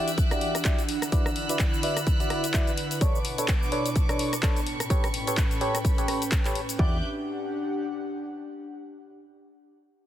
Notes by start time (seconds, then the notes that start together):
Already playing: E3 D4 E4 F#4 G4 D5 E5 D6 E6 F#6
0.00 F#5
0.08 closed hi-hat, shaker
0.18 kick, closed hi-hat, shaker
0.31 E4 F#4 G4 D5, cross-stick, closed hi-hat, shaker
0.41 open hi-hat
0.55 cross-stick, closed hi-hat, shaker
0.65 E4 F#4 G4 D5, kick, clap, closed hi-hat, shaker
0.79 closed hi-hat, shaker
0.89 D3 D5 B5 E6 F#6, open hi-hat
1.02 cross-stick, closed hi-hat, shaker
1.12 E4 F#4 B4 D5, kick, closed hi-hat, shaker
1.17 E4
1.26 cross-stick, shaker
1.36 open hi-hat
1.49 E4 F#4 B4 D5, closed hi-hat, shaker
1.59 kick, clap, closed hi-hat, shaker
1.74 shaker
1.83 E4 F#4 B4 D5, open hi-hat
1.97 cross-stick, closed hi-hat, shaker
2.07 kick, closed hi-hat, shaker
2.20 E4 F#4 B4 D5, closed hi-hat, shaker
2.30 cross-stick, open hi-hat
2.44 closed hi-hat, shaker
2.54 E4 F#4 B4 D5, kick, clap, closed hi-hat, shaker
2.67 closed hi-hat, shaker
2.77 open hi-hat
2.91 open hi-hat, shaker
3.01 B2 D4 A4 B4 C#5 A5 C#6 D6, kick, closed hi-hat, shaker
3.15 shaker
3.24 D4, open hi-hat
3.38 D4 A4 B4 C#5, closed hi-hat, shaker
3.48 kick, clap, closed hi-hat, shaker
3.63 shaker
3.72 D4 A4 B4 C#5, open hi-hat
3.76 A5
3.86 closed hi-hat, shaker
3.96 kick, closed hi-hat, shaker
4.09 D4 A4 B4 C#5, cross-stick, closed hi-hat, shaker
4.19 open hi-hat
4.33 cross-stick, closed hi-hat, shaker
4.43 D4 A4 B4 C#5, kick, clap, closed hi-hat, shaker
4.56 closed hi-hat, shaker
4.66 A2 A4 G5 B5, open hi-hat
4.76 C#4, cross-stick, closed hi-hat
4.81 B4, shaker
4.90 G4 A4 B4 C#5, kick, closed hi-hat, shaker
5.04 cross-stick, closed hi-hat, shaker
5.14 open hi-hat
5.27 G4 A4 B4 C#5, closed hi-hat, shaker
5.37 kick, clap, closed hi-hat, shaker
5.51 closed hi-hat, shaker
5.58 G4 A4 B4 C#5 G5, open hi-hat
5.75 cross-stick, closed hi-hat, shaker
5.85 kick, closed hi-hat, shaker
5.98 G4 A4 B4 C#5, closed hi-hat, shaker
6.08 cross-stick, open hi-hat
6.22 closed hi-hat, shaker
6.32 kick, clap, closed hi-hat, shaker
6.45 G4 A4 B4 C#5, clap, closed hi-hat, shaker
6.55 open hi-hat
6.69 open hi-hat, shaker
6.79 E2 D4 E4 F#4 G4 D5 E5 D6 F#6 G6, kick
6.87 G4
6.95 F#5